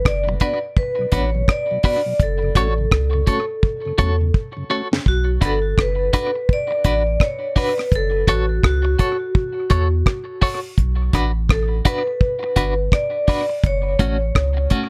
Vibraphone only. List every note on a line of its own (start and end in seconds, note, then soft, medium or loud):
0.07 0.23 D5 loud
0.42 0.58 D5 medium
0.78 1.10 B4 loud
1.14 1.50 C#5 medium
1.50 1.85 D5 loud
1.86 2.22 D5 loud
2.23 4.32 A4 medium
5.08 5.24 F#4 medium
5.45 5.80 A4 medium
5.81 6.52 B4 loud
6.53 6.87 D5 loud
6.88 7.23 D5 medium
7.23 7.58 C#5 medium
7.58 7.90 B4 medium
7.96 8.30 A4 loud
8.30 8.62 F#4 medium
8.66 10.03 F#4 medium
11.51 11.66 A4 medium
11.88 12.89 B4 medium
12.93 13.60 D5 medium
13.66 14.68 C#5 loud